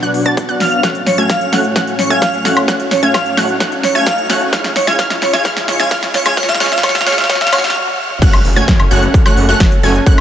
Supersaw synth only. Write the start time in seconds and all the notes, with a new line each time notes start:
0.03 B3 D4 F#4 D5 F#5
0.26 B3 D4 F#4 D5 A5
0.49 B3 D4 F#4 D5 F#5
0.83 A3 C#4 F#4 C#5 F#5
1.18 A3 C#4 F#4 C#5 G#5
1.53 A3 C#4 F#4 C#5 F#5
1.76 A3 C#4 F#4 C#5 F#5
2.10 A3 C#4 F#4 C#5 G#5
2.45 A3 C#4 F#4 C#5 F#5
2.68 A3 C#4 F#4 C#5 F#5
3.03 A3 C#4 F#4 C#5 G#5
3.37 A3 C#4 F#4 C#5 F#5
3.60 A3 C#4 F#4 C#5 F#5
3.95 A3 C#4 F#4 C#5 G#5
4.30 A3 C#4 F#4 C#5 F#5
4.53 G#3 C#4 F4 C#5 F5
4.87 G#3 C#4 F4 C#5 G#5
4.99 G#3 C#4 F4 C#5 F5
5.33 G#3 C#4 F4 C#5 G#5
5.45 G#3 C#4 F4
5.80 G#3 C#4 F4 C#5 G#5
5.91 G#3 C#4 F4 F5
6.26 G#3 C#4 F4 C#5 G#5
6.37 G#3 C#4 F4 F5
6.60 G#3 C#4 F4 C#5 F5
6.83 G#3 C#4 F4 C#5 F5
7.07 G#3 C#4 F4 C#5 F5
7.30 G#3 C#4 F4 C#5 F5
7.53 G#3 C#4 F4 C#5 F5
8.22 A3 C#4 F#4 C#5 F#5
8.56 A3 C#4 F#4 C#5 G#5
8.91 A3 C#4 F#4 C#5 F#5
9.26 A3 C#4 F#4 C#5 F#5
9.49 A3 C#4 F#4 C#5 F#5
9.83 A3 C#4 F#4 C#5 G#5
10.06 A3 C#4 F#4 C#5 F#5